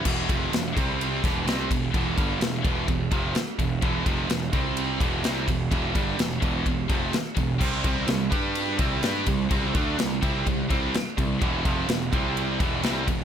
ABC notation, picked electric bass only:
X:1
M:4/4
L:1/8
Q:1/4=127
K:Em
V:1 name="Picked electric bass" clef=bass
E,,, =F,,, E,,, C,,2 E,,, C,, E,,, | E,,, G,,, E,,, E,,, E,,, =F,,, z E,,, | E,,, =F,,, E,,, C,,2 E,,, C,, E,,, | E,,, G,,, E,,, E,,, E,,, =F,,, z E,,, |
C,, C,, C,, G,,2 C,, G,, C,, | C,, D,, C,, C,, C,, C,, z C,, | E,,, =F,,, E,,, C,,2 E,,, C,, E,,, |]